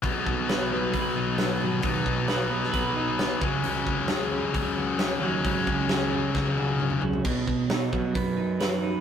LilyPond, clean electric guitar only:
\new Staff \with { instrumentName = "Clean electric guitar" } { \time 4/4 \key b \major \tempo 4 = 133 b,4 b'8 b8 b'8 dis'8 b8 fis8 | b,4 b'8 b8 b'8 dis'8 b8 cis8 | cis4 gis'8 cis'8 gis'8 fis'8 cis'8 fis8 | cis4 gis'8 cis'8 gis'8 fis'8 cis'8 fis8 |
b,4 dis'8 fis8 b8 dis'8 b'8 dis'8 | }